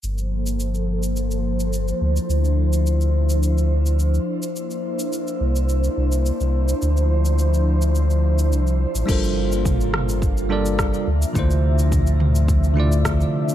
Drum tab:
CC |----------------|----------------|----------------|----------------|
SH |xx-xxx-xxx-xxx-x|xx-xxx-xxx-xxx-x|xx-xxx-xxx-xxx-x|xx-xxx-xxx-xxx-x|
SD |----------------|----------------|----------------|----------------|
T2 |----------------|----------------|----------------|----------------|
BD |----------------|----------------|----------------|----------------|

CC |x---------------|----------------|
SH |xx-xxx-xxx-xxx-x|xx-xxx-xxx-xxx-x|
SD |------r-----r---|------------r---|
T2 |----o-o---------|----o-o---o-----|
BD |o---o---o---o---|o---o---o---o---|